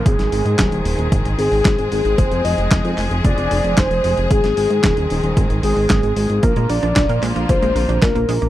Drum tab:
HH |xxoxxxoxxxooxxox|xxoxxxoxxxoxxxox|xxoxxxoxxxooxxox|xxoxxxoxxxoxxxox|
CP |----x-------x---|----x-x-----x---|----x-------x---|----x-x-----x---|
SD |-o--o-------o---|----o-------o---|-o--o-------o---|----o-------o---|
BD |o---o---o---o---|o---o---o---o---|o---o---o---o---|o---o---o---o---|